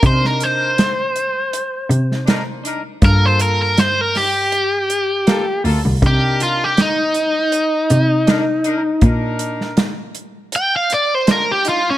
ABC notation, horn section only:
X:1
M:4/4
L:1/16
Q:"Swing 16ths" 1/4=80
K:Cdor
V:1 name="Horn section"
[DEB]4 z8 [DEB] z [DEB] z | [B,FA]4 z8 [B,FA] z [B,FA] z | [DEB]4 z8 [DEB] z [DEB] z | [DEB]4 z8 [DEF] z [DEF] z |]